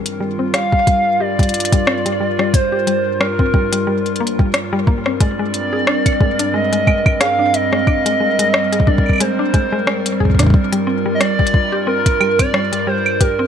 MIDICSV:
0, 0, Header, 1, 5, 480
1, 0, Start_track
1, 0, Tempo, 666667
1, 1828, Time_signature, 4, 2, 24, 8
1, 9698, End_track
2, 0, Start_track
2, 0, Title_t, "Soft synth lead"
2, 0, Program_c, 0, 80
2, 389, Note_on_c, 0, 77, 116
2, 868, Note_on_c, 0, 74, 116
2, 879, Note_off_c, 0, 77, 0
2, 1827, Note_on_c, 0, 72, 101
2, 1838, Note_off_c, 0, 74, 0
2, 2302, Note_off_c, 0, 72, 0
2, 2306, Note_on_c, 0, 70, 88
2, 2998, Note_off_c, 0, 70, 0
2, 3748, Note_on_c, 0, 74, 106
2, 4708, Note_on_c, 0, 75, 113
2, 4719, Note_off_c, 0, 74, 0
2, 5183, Note_off_c, 0, 75, 0
2, 5187, Note_on_c, 0, 77, 107
2, 5428, Note_on_c, 0, 75, 126
2, 5438, Note_off_c, 0, 77, 0
2, 6388, Note_on_c, 0, 74, 96
2, 6399, Note_off_c, 0, 75, 0
2, 6628, Note_on_c, 0, 72, 95
2, 6639, Note_off_c, 0, 74, 0
2, 7348, Note_off_c, 0, 72, 0
2, 8026, Note_on_c, 0, 75, 82
2, 8072, Note_on_c, 0, 74, 114
2, 8083, Note_off_c, 0, 75, 0
2, 8546, Note_off_c, 0, 74, 0
2, 8550, Note_on_c, 0, 70, 100
2, 8924, Note_on_c, 0, 74, 107
2, 8935, Note_off_c, 0, 70, 0
2, 9269, Note_on_c, 0, 72, 99
2, 9280, Note_off_c, 0, 74, 0
2, 9508, Note_on_c, 0, 70, 100
2, 9519, Note_off_c, 0, 72, 0
2, 9698, Note_off_c, 0, 70, 0
2, 9698, End_track
3, 0, Start_track
3, 0, Title_t, "Ambient pad"
3, 0, Program_c, 1, 92
3, 0, Note_on_c, 1, 43, 79
3, 0, Note_on_c, 1, 55, 74
3, 0, Note_on_c, 1, 65, 73
3, 0, Note_on_c, 1, 70, 90
3, 3719, Note_off_c, 1, 65, 0
3, 3749, Note_on_c, 1, 60, 74
3, 7559, Note_off_c, 1, 43, 0
3, 7560, Note_off_c, 1, 60, 0
3, 7587, Note_on_c, 1, 65, 74
3, 7588, Note_on_c, 1, 43, 77
3, 9489, Note_off_c, 1, 65, 0
3, 9508, Note_on_c, 1, 67, 74
3, 9698, Note_off_c, 1, 43, 0
3, 9698, Note_off_c, 1, 55, 0
3, 9698, Note_off_c, 1, 67, 0
3, 9698, Note_off_c, 1, 70, 0
3, 9698, End_track
4, 0, Start_track
4, 0, Title_t, "Synth arpeggio sound"
4, 0, Program_c, 2, 84
4, 147, Note_on_c, 2, 55, 71
4, 275, Note_off_c, 2, 55, 0
4, 281, Note_on_c, 2, 60, 73
4, 368, Note_off_c, 2, 60, 0
4, 387, Note_on_c, 2, 55, 80
4, 512, Note_off_c, 2, 55, 0
4, 521, Note_on_c, 2, 55, 75
4, 617, Note_off_c, 2, 55, 0
4, 626, Note_on_c, 2, 55, 76
4, 736, Note_off_c, 2, 55, 0
4, 867, Note_on_c, 2, 67, 83
4, 976, Note_off_c, 2, 67, 0
4, 1001, Note_on_c, 2, 55, 79
4, 1053, Note_off_c, 2, 55, 0
4, 1241, Note_on_c, 2, 55, 76
4, 1342, Note_off_c, 2, 55, 0
4, 1347, Note_on_c, 2, 60, 81
4, 1456, Note_off_c, 2, 60, 0
4, 1482, Note_on_c, 2, 55, 78
4, 1579, Note_off_c, 2, 55, 0
4, 1587, Note_on_c, 2, 55, 78
4, 1712, Note_off_c, 2, 55, 0
4, 1721, Note_on_c, 2, 55, 78
4, 1807, Note_off_c, 2, 55, 0
4, 1961, Note_on_c, 2, 67, 78
4, 2047, Note_off_c, 2, 67, 0
4, 2067, Note_on_c, 2, 55, 75
4, 2133, Note_off_c, 2, 55, 0
4, 2307, Note_on_c, 2, 55, 82
4, 2435, Note_off_c, 2, 55, 0
4, 2441, Note_on_c, 2, 60, 75
4, 2528, Note_off_c, 2, 60, 0
4, 2547, Note_on_c, 2, 55, 75
4, 2673, Note_off_c, 2, 55, 0
4, 2681, Note_on_c, 2, 55, 76
4, 2778, Note_off_c, 2, 55, 0
4, 2787, Note_on_c, 2, 55, 79
4, 2897, Note_off_c, 2, 55, 0
4, 3027, Note_on_c, 2, 58, 80
4, 3093, Note_off_c, 2, 58, 0
4, 3161, Note_on_c, 2, 55, 74
4, 3262, Note_off_c, 2, 55, 0
4, 3403, Note_on_c, 2, 55, 102
4, 3489, Note_off_c, 2, 55, 0
4, 3508, Note_on_c, 2, 58, 77
4, 3636, Note_off_c, 2, 58, 0
4, 3642, Note_on_c, 2, 60, 74
4, 3694, Note_off_c, 2, 60, 0
4, 3748, Note_on_c, 2, 56, 87
4, 3876, Note_off_c, 2, 56, 0
4, 3883, Note_on_c, 2, 56, 77
4, 3969, Note_off_c, 2, 56, 0
4, 4123, Note_on_c, 2, 68, 76
4, 4209, Note_off_c, 2, 68, 0
4, 4229, Note_on_c, 2, 62, 78
4, 4337, Note_off_c, 2, 62, 0
4, 4468, Note_on_c, 2, 56, 74
4, 4596, Note_off_c, 2, 56, 0
4, 4603, Note_on_c, 2, 62, 76
4, 4689, Note_off_c, 2, 62, 0
4, 4708, Note_on_c, 2, 56, 85
4, 4834, Note_off_c, 2, 56, 0
4, 4843, Note_on_c, 2, 56, 78
4, 4939, Note_off_c, 2, 56, 0
4, 4948, Note_on_c, 2, 56, 82
4, 5057, Note_off_c, 2, 56, 0
4, 5187, Note_on_c, 2, 68, 81
4, 5297, Note_off_c, 2, 68, 0
4, 5322, Note_on_c, 2, 62, 76
4, 5408, Note_off_c, 2, 62, 0
4, 5561, Note_on_c, 2, 56, 75
4, 5662, Note_off_c, 2, 56, 0
4, 5667, Note_on_c, 2, 62, 87
4, 5777, Note_off_c, 2, 62, 0
4, 5801, Note_on_c, 2, 56, 77
4, 5899, Note_off_c, 2, 56, 0
4, 5907, Note_on_c, 2, 56, 77
4, 6033, Note_off_c, 2, 56, 0
4, 6042, Note_on_c, 2, 56, 77
4, 6128, Note_off_c, 2, 56, 0
4, 6281, Note_on_c, 2, 68, 77
4, 6368, Note_off_c, 2, 68, 0
4, 6387, Note_on_c, 2, 62, 76
4, 6497, Note_off_c, 2, 62, 0
4, 6628, Note_on_c, 2, 56, 83
4, 6756, Note_off_c, 2, 56, 0
4, 6762, Note_on_c, 2, 62, 77
4, 6848, Note_off_c, 2, 62, 0
4, 6867, Note_on_c, 2, 56, 84
4, 6993, Note_off_c, 2, 56, 0
4, 7002, Note_on_c, 2, 56, 77
4, 7099, Note_off_c, 2, 56, 0
4, 7108, Note_on_c, 2, 56, 83
4, 7217, Note_off_c, 2, 56, 0
4, 7346, Note_on_c, 2, 68, 78
4, 7456, Note_off_c, 2, 68, 0
4, 7482, Note_on_c, 2, 62, 77
4, 7568, Note_off_c, 2, 62, 0
4, 7722, Note_on_c, 2, 55, 79
4, 7823, Note_off_c, 2, 55, 0
4, 7827, Note_on_c, 2, 60, 76
4, 7937, Note_off_c, 2, 60, 0
4, 7961, Note_on_c, 2, 55, 73
4, 8057, Note_off_c, 2, 55, 0
4, 8066, Note_on_c, 2, 55, 79
4, 8192, Note_off_c, 2, 55, 0
4, 8201, Note_on_c, 2, 55, 77
4, 8287, Note_off_c, 2, 55, 0
4, 8441, Note_on_c, 2, 67, 78
4, 8528, Note_off_c, 2, 67, 0
4, 8546, Note_on_c, 2, 60, 83
4, 8656, Note_off_c, 2, 60, 0
4, 8787, Note_on_c, 2, 55, 80
4, 8915, Note_off_c, 2, 55, 0
4, 8922, Note_on_c, 2, 60, 76
4, 9008, Note_off_c, 2, 60, 0
4, 9027, Note_on_c, 2, 55, 84
4, 9153, Note_off_c, 2, 55, 0
4, 9161, Note_on_c, 2, 55, 75
4, 9259, Note_off_c, 2, 55, 0
4, 9267, Note_on_c, 2, 55, 81
4, 9377, Note_off_c, 2, 55, 0
4, 9508, Note_on_c, 2, 67, 80
4, 9617, Note_off_c, 2, 67, 0
4, 9642, Note_on_c, 2, 60, 78
4, 9698, Note_off_c, 2, 60, 0
4, 9698, End_track
5, 0, Start_track
5, 0, Title_t, "Drums"
5, 41, Note_on_c, 9, 42, 54
5, 113, Note_off_c, 9, 42, 0
5, 388, Note_on_c, 9, 37, 125
5, 388, Note_on_c, 9, 42, 92
5, 460, Note_off_c, 9, 37, 0
5, 460, Note_off_c, 9, 42, 0
5, 522, Note_on_c, 9, 36, 89
5, 594, Note_off_c, 9, 36, 0
5, 627, Note_on_c, 9, 36, 109
5, 627, Note_on_c, 9, 42, 54
5, 699, Note_off_c, 9, 36, 0
5, 699, Note_off_c, 9, 42, 0
5, 1002, Note_on_c, 9, 36, 89
5, 1003, Note_on_c, 9, 42, 34
5, 1028, Note_off_c, 9, 42, 0
5, 1028, Note_on_c, 9, 42, 43
5, 1073, Note_off_c, 9, 42, 0
5, 1073, Note_on_c, 9, 42, 48
5, 1074, Note_off_c, 9, 36, 0
5, 1109, Note_off_c, 9, 42, 0
5, 1109, Note_on_c, 9, 42, 55
5, 1153, Note_off_c, 9, 42, 0
5, 1153, Note_on_c, 9, 42, 62
5, 1188, Note_off_c, 9, 42, 0
5, 1188, Note_on_c, 9, 42, 70
5, 1242, Note_off_c, 9, 42, 0
5, 1242, Note_on_c, 9, 36, 118
5, 1242, Note_on_c, 9, 42, 89
5, 1314, Note_off_c, 9, 36, 0
5, 1314, Note_off_c, 9, 42, 0
5, 1348, Note_on_c, 9, 37, 127
5, 1420, Note_off_c, 9, 37, 0
5, 1482, Note_on_c, 9, 42, 54
5, 1554, Note_off_c, 9, 42, 0
5, 1722, Note_on_c, 9, 37, 64
5, 1794, Note_off_c, 9, 37, 0
5, 1827, Note_on_c, 9, 36, 122
5, 1828, Note_on_c, 9, 42, 91
5, 1899, Note_off_c, 9, 36, 0
5, 1900, Note_off_c, 9, 42, 0
5, 2068, Note_on_c, 9, 42, 51
5, 2140, Note_off_c, 9, 42, 0
5, 2309, Note_on_c, 9, 37, 124
5, 2381, Note_off_c, 9, 37, 0
5, 2442, Note_on_c, 9, 36, 84
5, 2514, Note_off_c, 9, 36, 0
5, 2548, Note_on_c, 9, 36, 104
5, 2620, Note_off_c, 9, 36, 0
5, 2683, Note_on_c, 9, 42, 94
5, 2755, Note_off_c, 9, 42, 0
5, 2923, Note_on_c, 9, 42, 23
5, 2993, Note_off_c, 9, 42, 0
5, 2993, Note_on_c, 9, 42, 31
5, 3065, Note_off_c, 9, 42, 0
5, 3073, Note_on_c, 9, 42, 40
5, 3145, Note_off_c, 9, 42, 0
5, 3162, Note_on_c, 9, 36, 83
5, 3234, Note_off_c, 9, 36, 0
5, 3268, Note_on_c, 9, 37, 121
5, 3268, Note_on_c, 9, 42, 91
5, 3340, Note_off_c, 9, 37, 0
5, 3340, Note_off_c, 9, 42, 0
5, 3508, Note_on_c, 9, 36, 103
5, 3580, Note_off_c, 9, 36, 0
5, 3642, Note_on_c, 9, 37, 61
5, 3714, Note_off_c, 9, 37, 0
5, 3748, Note_on_c, 9, 36, 119
5, 3748, Note_on_c, 9, 42, 85
5, 3820, Note_off_c, 9, 36, 0
5, 3820, Note_off_c, 9, 42, 0
5, 3988, Note_on_c, 9, 42, 49
5, 4060, Note_off_c, 9, 42, 0
5, 4228, Note_on_c, 9, 37, 116
5, 4300, Note_off_c, 9, 37, 0
5, 4362, Note_on_c, 9, 36, 87
5, 4363, Note_on_c, 9, 42, 72
5, 4363, Note_on_c, 9, 75, 36
5, 4434, Note_off_c, 9, 36, 0
5, 4435, Note_off_c, 9, 42, 0
5, 4435, Note_off_c, 9, 75, 0
5, 4468, Note_on_c, 9, 36, 102
5, 4540, Note_off_c, 9, 36, 0
5, 4603, Note_on_c, 9, 42, 92
5, 4675, Note_off_c, 9, 42, 0
5, 4843, Note_on_c, 9, 42, 49
5, 4915, Note_off_c, 9, 42, 0
5, 4948, Note_on_c, 9, 36, 81
5, 4949, Note_on_c, 9, 75, 59
5, 5020, Note_off_c, 9, 36, 0
5, 5021, Note_off_c, 9, 75, 0
5, 5082, Note_on_c, 9, 36, 111
5, 5083, Note_on_c, 9, 75, 71
5, 5154, Note_off_c, 9, 36, 0
5, 5155, Note_off_c, 9, 75, 0
5, 5189, Note_on_c, 9, 37, 122
5, 5189, Note_on_c, 9, 42, 88
5, 5261, Note_off_c, 9, 37, 0
5, 5261, Note_off_c, 9, 42, 0
5, 5429, Note_on_c, 9, 42, 50
5, 5501, Note_off_c, 9, 42, 0
5, 5563, Note_on_c, 9, 37, 62
5, 5635, Note_off_c, 9, 37, 0
5, 5668, Note_on_c, 9, 36, 113
5, 5669, Note_on_c, 9, 75, 50
5, 5740, Note_off_c, 9, 36, 0
5, 5741, Note_off_c, 9, 75, 0
5, 5803, Note_on_c, 9, 42, 75
5, 5875, Note_off_c, 9, 42, 0
5, 6042, Note_on_c, 9, 42, 85
5, 6114, Note_off_c, 9, 42, 0
5, 6148, Note_on_c, 9, 37, 116
5, 6220, Note_off_c, 9, 37, 0
5, 6283, Note_on_c, 9, 42, 50
5, 6335, Note_on_c, 9, 36, 82
5, 6355, Note_off_c, 9, 42, 0
5, 6388, Note_off_c, 9, 36, 0
5, 6388, Note_on_c, 9, 36, 95
5, 6460, Note_off_c, 9, 36, 0
5, 6468, Note_on_c, 9, 36, 76
5, 6523, Note_on_c, 9, 75, 17
5, 6540, Note_off_c, 9, 36, 0
5, 6540, Note_off_c, 9, 75, 0
5, 6540, Note_on_c, 9, 75, 19
5, 6548, Note_on_c, 9, 36, 61
5, 6549, Note_off_c, 9, 75, 0
5, 6549, Note_on_c, 9, 75, 22
5, 6576, Note_off_c, 9, 75, 0
5, 6576, Note_on_c, 9, 75, 25
5, 6593, Note_off_c, 9, 75, 0
5, 6593, Note_on_c, 9, 75, 29
5, 6610, Note_off_c, 9, 75, 0
5, 6610, Note_on_c, 9, 75, 31
5, 6620, Note_off_c, 9, 36, 0
5, 6627, Note_on_c, 9, 42, 87
5, 6682, Note_off_c, 9, 75, 0
5, 6699, Note_off_c, 9, 42, 0
5, 6868, Note_on_c, 9, 36, 78
5, 6868, Note_on_c, 9, 42, 50
5, 6940, Note_off_c, 9, 36, 0
5, 6940, Note_off_c, 9, 42, 0
5, 7108, Note_on_c, 9, 37, 117
5, 7180, Note_off_c, 9, 37, 0
5, 7242, Note_on_c, 9, 42, 76
5, 7314, Note_off_c, 9, 42, 0
5, 7348, Note_on_c, 9, 36, 46
5, 7381, Note_off_c, 9, 36, 0
5, 7381, Note_on_c, 9, 36, 49
5, 7415, Note_off_c, 9, 36, 0
5, 7415, Note_on_c, 9, 36, 56
5, 7449, Note_off_c, 9, 36, 0
5, 7449, Note_on_c, 9, 36, 63
5, 7482, Note_off_c, 9, 36, 0
5, 7482, Note_on_c, 9, 36, 71
5, 7482, Note_on_c, 9, 37, 59
5, 7482, Note_on_c, 9, 42, 90
5, 7509, Note_off_c, 9, 36, 0
5, 7509, Note_on_c, 9, 36, 76
5, 7535, Note_off_c, 9, 36, 0
5, 7535, Note_on_c, 9, 36, 82
5, 7554, Note_off_c, 9, 37, 0
5, 7554, Note_off_c, 9, 42, 0
5, 7562, Note_off_c, 9, 36, 0
5, 7562, Note_on_c, 9, 36, 90
5, 7588, Note_off_c, 9, 36, 0
5, 7588, Note_on_c, 9, 36, 114
5, 7660, Note_off_c, 9, 36, 0
5, 7722, Note_on_c, 9, 42, 50
5, 7794, Note_off_c, 9, 42, 0
5, 8068, Note_on_c, 9, 37, 113
5, 8068, Note_on_c, 9, 42, 88
5, 8140, Note_off_c, 9, 37, 0
5, 8140, Note_off_c, 9, 42, 0
5, 8203, Note_on_c, 9, 36, 82
5, 8256, Note_on_c, 9, 42, 52
5, 8275, Note_off_c, 9, 36, 0
5, 8309, Note_on_c, 9, 36, 98
5, 8328, Note_off_c, 9, 42, 0
5, 8381, Note_off_c, 9, 36, 0
5, 8683, Note_on_c, 9, 36, 82
5, 8683, Note_on_c, 9, 42, 74
5, 8755, Note_off_c, 9, 36, 0
5, 8755, Note_off_c, 9, 42, 0
5, 8789, Note_on_c, 9, 75, 65
5, 8861, Note_off_c, 9, 75, 0
5, 8923, Note_on_c, 9, 36, 111
5, 8924, Note_on_c, 9, 42, 87
5, 8924, Note_on_c, 9, 75, 74
5, 8995, Note_off_c, 9, 36, 0
5, 8996, Note_off_c, 9, 42, 0
5, 8996, Note_off_c, 9, 75, 0
5, 9029, Note_on_c, 9, 37, 116
5, 9101, Note_off_c, 9, 37, 0
5, 9163, Note_on_c, 9, 42, 50
5, 9235, Note_off_c, 9, 42, 0
5, 9403, Note_on_c, 9, 75, 54
5, 9475, Note_off_c, 9, 75, 0
5, 9509, Note_on_c, 9, 36, 112
5, 9509, Note_on_c, 9, 42, 94
5, 9581, Note_off_c, 9, 36, 0
5, 9581, Note_off_c, 9, 42, 0
5, 9698, End_track
0, 0, End_of_file